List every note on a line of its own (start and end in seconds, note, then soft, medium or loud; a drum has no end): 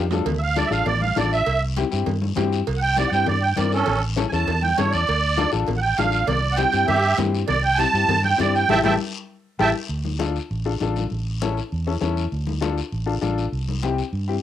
0.00 0.20 F2 medium
0.11 0.23 D4 medium
0.11 0.23 F4 medium
0.11 0.23 A4 medium
0.11 high conga medium
0.11 low timbale medium
0.11 short guiro medium
0.26 0.62 D2 medium
0.26 cowbell loud
0.26 low conga medium
0.26 long guiro medium
0.38 0.40 E5 soft
0.43 0.57 F5 medium
0.56 0.62 D4 medium
0.56 0.62 F4 medium
0.56 0.62 A4 medium
0.56 0.71 D5 medium
0.56 cowbell medium
0.56 high conga medium
0.56 short guiro medium
0.66 0.69 E5 medium
0.71 0.83 A1 medium
0.71 0.87 D4 medium
0.71 0.87 F4 medium
0.71 0.87 A4 medium
0.71 0.86 F5 medium
0.71 short guiro medium
0.86 1.11 A1 loud
0.86 1.01 D5 medium
0.86 cowbell medium
0.86 low conga medium
0.86 long guiro medium
1.01 1.16 F5 medium
1.01 high conga medium
1.16 1.41 A1 medium
1.16 1.38 D4 medium
1.16 1.38 F4 medium
1.16 1.38 A4 medium
1.16 1.32 D5 medium
1.16 cowbell medium
1.16 high conga medium
1.16 low conga medium
1.16 short guiro medium
1.33 1.62 E5 medium
1.33 short guiro medium
1.46 1.83 C2 loud
1.46 cowbell loud
1.46 long guiro medium
1.76 1.82 C4 medium
1.76 1.82 E4 medium
1.76 1.83 G4 medium
1.76 cowbell medium
1.76 high conga medium
1.76 short guiro medium
1.91 2.05 G2 medium
1.91 2.07 C4 medium
1.91 2.07 E4 medium
1.91 2.08 G4 medium
1.91 short guiro medium
2.06 2.31 G2 loud
2.06 cowbell medium
2.06 low conga medium
2.06 long guiro medium
2.22 high conga medium
2.36 2.61 G2 medium
2.36 2.58 C4 medium
2.36 2.58 E4 medium
2.36 2.58 G4 medium
2.36 cowbell medium
2.36 high conga medium
2.36 low conga medium
2.36 low timbale medium
2.36 short guiro medium
2.52 short guiro medium
2.67 3.04 C2 loud
2.67 cowbell loud
2.67 long guiro medium
2.77 2.80 F#5 medium
2.82 2.97 G5 medium
2.97 3.03 C4 medium
2.97 3.03 E4 medium
2.97 3.03 G4 medium
2.97 3.12 D5 medium
2.97 cowbell medium
2.97 high conga medium
2.97 short guiro medium
3.08 3.24 G2 medium
3.08 3.11 F#5 medium
3.08 3.27 G5 medium
3.13 3.28 C4 medium
3.13 3.29 E4 medium
3.13 3.29 G4 medium
3.13 short guiro medium
3.26 3.52 G2 loud
3.26 3.42 D5 medium
3.26 cowbell medium
3.26 low conga medium
3.26 long guiro medium
3.42 3.57 G5 medium
3.56 3.82 G2 loud
3.56 3.78 C4 medium
3.56 3.79 E4 medium
3.56 3.78 A#4 medium
3.56 3.72 D5 medium
3.56 cowbell medium
3.56 high conga medium
3.56 low conga medium
3.56 short guiro medium
3.72 4.01 C#4 medium
3.72 4.02 A4 medium
3.72 short guiro medium
3.86 4.24 A1 medium
3.86 cowbell medium
3.86 low conga medium
3.86 long guiro medium
4.16 4.22 C#4 medium
4.16 4.22 E4 medium
4.16 4.23 A4 loud
4.16 cowbell medium
4.16 high conga medium
4.16 short guiro medium
4.29 4.45 E2 medium
4.29 4.48 C#4 medium
4.29 4.48 E4 medium
4.29 4.31 G#5 medium
4.29 short guiro medium
4.33 4.48 A4 medium
4.33 4.62 A5 medium
4.47 4.72 E2 loud
4.47 cowbell medium
4.47 low conga medium
4.47 long guiro medium
4.62 4.77 G5 medium
4.62 high conga medium
4.77 4.92 G2 medium
4.77 4.99 C#4 medium
4.77 4.99 E4 medium
4.77 4.99 A4 medium
4.77 4.92 C#5 medium
4.77 cowbell medium
4.77 high conga medium
4.77 low conga medium
4.77 short guiro medium
4.91 5.07 E2 medium
4.91 5.50 D5 loud
4.91 short guiro medium
5.07 5.44 D2 medium
5.07 cowbell medium
5.07 long guiro medium
5.37 5.43 D4 medium
5.37 5.43 F4 medium
5.37 5.43 A4 medium
5.37 cowbell medium
5.37 high conga medium
5.37 short guiro medium
5.52 5.65 A1 medium
5.52 5.68 D4 medium
5.52 5.68 F4 medium
5.52 5.69 A4 medium
5.52 short guiro medium
5.67 5.92 A1 loud
5.67 cowbell medium
5.67 low conga medium
5.67 long guiro medium
5.78 5.80 F#5 medium
5.82 5.97 G5 medium
5.97 6.22 A1 medium
5.97 6.20 D4 medium
5.97 6.19 F4 medium
5.97 6.20 A4 medium
5.97 6.27 F5 medium
5.97 cowbell medium
5.97 high conga medium
5.97 short guiro medium
6.12 short guiro medium
6.27 6.64 C2 loud
6.27 6.57 D5 medium
6.27 cowbell loud
6.27 low conga medium
6.27 long guiro medium
6.52 6.55 F#5 medium
6.56 6.63 C4 medium
6.56 6.63 E4 medium
6.56 6.63 G4 medium
6.56 6.86 G5 loud
6.56 cowbell medium
6.56 high conga medium
6.56 short guiro medium
6.72 6.85 G2 medium
6.72 6.89 C4 medium
6.72 6.89 E4 medium
6.72 6.89 G4 medium
6.72 short guiro medium
6.87 7.12 G2 loud
6.87 7.16 G4 medium
6.87 7.17 E5 medium
6.87 cowbell medium
6.87 low conga medium
6.87 long guiro medium
7.18 7.43 G2 loud
7.18 7.39 C4 medium
7.18 7.39 E4 medium
7.18 7.39 G4 medium
7.18 cowbell medium
7.18 high conga medium
7.18 low conga medium
7.18 low timbale medium
7.18 short guiro medium
7.35 short guiro medium
7.48 7.85 C2 medium
7.48 7.63 D5 loud
7.48 cowbell medium
7.48 low conga medium
7.48 long guiro medium
7.64 7.78 G5 medium
7.75 7.84 C4 medium
7.75 7.84 E4 medium
7.75 7.84 G4 medium
7.75 7.77 G#5 medium
7.75 8.23 A5 loud
7.75 high conga medium
7.79 cowbell medium
7.79 short guiro medium
7.94 8.06 G2 medium
7.94 8.10 C4 medium
7.94 8.10 E4 medium
7.94 8.10 G4 medium
7.94 short guiro medium
8.08 8.33 G2 loud
8.08 cowbell medium
8.08 low conga medium
8.08 long guiro medium
8.24 8.39 G5 medium
8.24 high conga medium
8.37 8.63 G2 loud
8.37 8.59 C4 medium
8.37 8.60 E4 medium
8.37 8.60 G4 medium
8.37 8.54 D5 loud
8.37 cowbell medium
8.37 high conga medium
8.37 low conga medium
8.37 short guiro medium
8.55 8.69 G5 medium
8.55 short guiro medium
8.68 8.80 A1 medium
8.68 8.79 E4 loud
8.68 8.79 G4 loud
8.68 8.79 A4 medium
8.68 8.79 E5 loud
8.68 8.80 G5 loud
8.68 8.79 A5 loud
8.68 high conga loud
8.68 high timbale medium
8.68 long guiro loud
8.84 8.95 A1 loud
8.84 8.94 E4 medium
8.84 8.94 G4 medium
8.84 8.94 A4 loud
8.84 8.94 E5 medium
8.84 8.94 G5 medium
8.84 8.94 A5 medium
8.84 high conga loud
8.84 high timbale loud
8.84 long guiro medium
9.59 9.71 A1 loud
9.59 9.69 E4 medium
9.59 9.69 G4 medium
9.59 9.69 A4 medium
9.59 9.70 E5 medium
9.59 9.70 G5 loud
9.59 9.70 A5 loud
9.59 high conga loud
9.59 high timbale medium
9.59 long guiro loud
9.89 10.38 D2 medium
9.89 high conga soft
9.89 long guiro medium
10.05 high conga medium
10.19 10.35 D4 medium
10.19 10.35 F4 medium
10.19 10.36 A4 medium
10.19 high conga medium
10.19 short guiro medium
10.36 short guiro medium
10.51 10.75 A1 medium
10.51 long guiro medium
10.65 10.71 D4 medium
10.65 10.71 F4 medium
10.65 10.71 A4 medium
10.65 high conga soft
10.80 11.05 A1 medium
10.80 11.02 D4 medium
10.80 11.02 F4 medium
10.80 11.03 A4 medium
10.80 high conga medium
10.80 short guiro medium
10.96 high conga medium
10.96 short guiro medium
11.10 11.60 A1 medium
11.10 high conga soft
11.10 long guiro medium
11.42 11.57 C#4 medium
11.42 11.58 E4 medium
11.42 11.58 A4 medium
11.42 high conga medium
11.42 short guiro medium
11.57 short guiro medium
11.72 11.96 E2 medium
11.72 long guiro medium
11.87 11.92 C#4 medium
11.87 11.92 E4 medium
11.87 11.92 A4 medium
11.87 high conga soft
12.01 12.26 E2 medium
12.01 12.22 C#4 medium
12.01 12.22 E4 medium
12.01 12.23 A4 medium
12.01 high conga medium
12.01 short guiro medium
12.17 short guiro medium
12.32 12.80 D2 medium
12.32 high conga soft
12.32 long guiro medium
12.47 high conga medium
12.61 12.77 D4 medium
12.61 12.78 F4 medium
12.61 12.78 A4 medium
12.61 high conga medium
12.61 short guiro medium
12.78 short guiro medium
12.92 13.17 A1 medium
12.92 long guiro medium
13.06 13.12 D4 medium
13.06 13.12 F4 medium
13.06 13.12 A4 medium
13.06 high conga soft
13.21 13.47 A1 medium
13.21 13.43 D4 medium
13.21 13.43 F4 medium
13.21 13.44 A4 medium
13.21 high conga medium
13.21 short guiro medium
13.38 short guiro medium
13.52 14.01 C2 medium
13.52 high conga soft
13.52 long guiro medium
13.68 high conga medium
13.83 13.99 C4 medium
13.83 13.99 E4 medium
13.83 13.99 G4 medium
13.83 high conga medium
13.83 short guiro medium
13.98 short guiro medium
14.13 14.37 G2 medium
14.13 long guiro medium
14.28 14.33 C4 medium
14.28 14.33 E4 medium
14.28 14.34 G4 medium
14.28 high conga soft